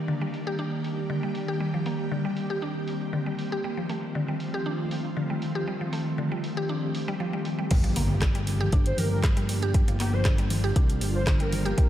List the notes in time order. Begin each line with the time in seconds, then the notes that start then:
Already playing: D#3 G3 A#3 D4 G4
0.08 D3
0.21 G3
0.34 open hi-hat
0.47 G4
0.59 D4
0.84 open hi-hat
1.10 D3
1.23 G3
1.35 open hi-hat
1.48 G4
1.60 G3 C4
1.74 F3
1.86 A#3, open hi-hat
2.11 D3
2.25 G3
2.37 open hi-hat
2.50 G4
2.62 D4
2.88 open hi-hat
3.13 D3
3.26 G3
3.39 open hi-hat
3.52 G4
3.64 D#3 F3 G3 A3 F4
3.77 F3
3.89 A3, open hi-hat
4.15 D3
4.28 G3
4.40 open hi-hat
4.54 G4
4.66 D4
4.91 open hi-hat
5.17 D3
5.30 G3
5.42 open hi-hat
5.55 G4
5.67 G3 G4
5.81 F3
5.93 A3, open hi-hat
6.18 D3
6.32 G3
6.44 open hi-hat
6.57 G4
6.69 D4
6.95 open hi-hat
7.08 G3
7.20 F3
7.33 G3
7.45 open hi-hat
7.59 G3
7.71 G1 F3 G3 A#3 D4 G4, kick, closed hi-hat, crash, impact
7.84 F3, closed hi-hat
7.96 A#3, open hi-hat
8.21 D3, kick, cross-stick, clap, closed hi-hat
8.35 G3, closed hi-hat
8.47 open hi-hat
8.61 G4
8.72 G1 D4, kick, closed hi-hat
8.86 C5, closed hi-hat
8.98 G1 A#4, open hi-hat, mid tom
9.11 A#4
9.23 D3, kick, cross-stick, clap, closed hi-hat
9.37 G3, closed hi-hat
9.49 open hi-hat
9.62 G4, closed hi-hat
9.74 G3 F4, kick, closed hi-hat
9.88 G1 F3, closed hi-hat
9.99 A#3 G4, clap, open hi-hat
10.13 C5
10.25 D3, kick, cross-stick, clap, closed hi-hat
10.38 G3, closed hi-hat
10.50 open hi-hat, mid tom
10.64 G4
10.76 C2 D4, kick, closed hi-hat
10.90 closed hi-hat
11.01 G1, open hi-hat
11.15 C5
11.27 D3, kick, cross-stick, clap, closed hi-hat
11.40 G3 A#4, closed hi-hat
11.52 open hi-hat, mid tom
11.65 G4, closed hi-hat
11.78 C2 G3, kick, closed hi-hat